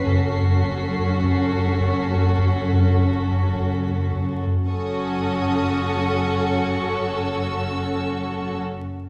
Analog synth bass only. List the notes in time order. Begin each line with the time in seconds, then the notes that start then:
0.06 F#2
0.64 F#2
1.23 F#2
1.80 F#2
2.38 F#2
2.97 F#2
3.55 F#2
4.12 F#2